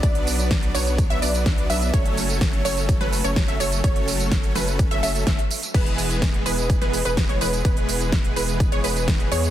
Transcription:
<<
  \new Staff \with { instrumentName = "Synth pluck" } { \time 4/4 \key fis \minor \tempo 4 = 126 d''4. cis''8. e''16 d''4 e''8 | cis''4. cis''8. b'8 cis''8 e''16 cis''8 | cis''4. b'8. e''16 e''8 e''16 r8. | b'4. b'8. b'8 b'8 cis''16 b'8 |
b'4. b'8. cis''16 b'4 cis''8 | }
  \new Staff \with { instrumentName = "Supersaw synth" } { \time 4/4 \key fis \minor r4. <fis b d' b' cis''>8. <fis b d' b' e''>16 <fis b d' b' d''>4 <fis b d' b' e''>8 | <fis a cis' a'>4. <fis a cis' a' cis''>8. <fis a cis' a' b'>8 <fis a cis' a' cis''>8 <fis a cis' a' e''>16 <fis a cis' a' cis''>8 | <fis a cis' a' cis''>4. <fis a cis' a' b'>8. <fis a cis' a' e''>16 <fis a cis' a' e''>8 <fis a cis' a' e''>16 r8. | <e gis b gis' b'>4. <e gis b gis' b'>8. <e gis b gis' b'>8 <e gis b gis' b'>8 <e gis b gis' cis''>16 <e gis b gis' b'>8 |
r4. <e gis b gis' b'>8. <e gis b gis' cis''>16 <e gis b gis' b'>4 <e gis b gis' cis''>8 | }
  \new Staff \with { instrumentName = "Sub bass" } { \clef bass \time 4/4 \key fis \minor b,,4. b,,8. b,,16 b,,4 b,,8 | fis,,4. fis,,8. fis,,8 fis,,8 fis,,16 fis,,8 | fis,,4. fis,,8. fis,,16 fis,,8 fis,,16 r8. | e,,4. e,,8. e,,8 e,,8 e,,16 e,,8 |
e,,4. e,,8. e,,16 e,,4 e,8 | }
  \new DrumStaff \with { instrumentName = "Drums" } \drummode { \time 4/4 <hh bd tamb>16 hh16 <hho tamb>16 <hh tamb>16 <hh bd sn tamb>16 hh16 <hho tamb>16 <hh tamb>16 <hh bd tamb>16 hh16 <hho tamb>16 <hh tamb>16 <hh bd sn tamb>16 hh16 <hho tamb>16 <hh tamb>16 | <hh bd tamb>16 hh16 <hho tamb>16 <hh tamb>16 <hh bd sn tamb>16 hh16 <hho tamb>16 <hh tamb>16 <hh bd tamb>16 <hh sn>16 <hho tamb>16 <hh tamb>16 <hh bd sn tamb>16 hh16 <hho tamb>16 <hh tamb>16 | <hh bd tamb>16 hh16 <hho tamb>16 <hh tamb>16 <hh bd sn>16 hh16 <hho sn tamb>16 <hh tamb>16 <hh bd tamb>16 hh16 <hho tamb>16 <hh tamb>16 <hh bd sn tamb>16 hh16 <hho tamb>16 <hh tamb>16 | <cymc hh bd tamb>16 hh16 <hho tamb>16 <hh tamb>16 <hh bd sn tamb>16 hh16 <hho tamb>16 <hh tamb>16 <hh bd tamb>16 <hh sn>16 <hho tamb>16 <hh tamb>16 <hh bd sn tamb>16 hh16 <hho tamb>16 <hh tamb>16 |
<hh bd tamb>16 hh16 <hho tamb>16 <hh tamb>16 <hh bd sn tamb>16 hh16 <hho tamb>16 <hh tamb>16 <hh bd tamb>16 hh16 <hho tamb>16 <hh tamb>16 <hh bd sn tamb>16 hh16 <hho tamb>16 <hh tamb>16 | }
>>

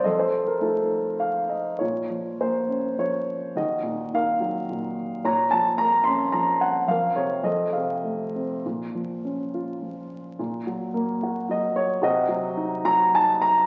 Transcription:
<<
  \new Staff \with { instrumentName = "Upright piano" } { \time 3/4 \key f \mixolydian \tempo 4 = 106 << { ees''16 c''8 bes'16 a'4 f''8 ees''8 | \key bes \minor des''4 c''4 des''4 | ees''4 f''4. r8 | bes''8 a''8 bes''8 c'''8 bes''8 ges''8 |
f''8 des''8 ees''8 f''4 r8 | r2. | r2 ees''8 des''8 | ees''4. bes''8 a''8 bes''8 | } \\ { a'4. r4. | f'4. r4. | ges'4 bes'4. r8 | des''4. r4. |
bes'4 a'4. r8 | r2. | r2. | ges'4. r4. | } >> }
  \new Staff \with { instrumentName = "Upright piano" } { \clef bass \time 3/4 \key f \mixolydian f,4 <a ees' f'>2 | \key bes \minor bes,8 f8 bes8 des'8 f4 | ees,8 bes,8 ees8 ges8 bes,4 | bes,8 f8 bes8 des'8 f4 |
f,8 c8 f,8 c8 a8 c'8 | bes,8 f8 des'8 f'8 f4 | bes,8 ges8 bes8 ges'8 ges4 | c8 ges8 ees'8 ges8 ees'4 | }
>>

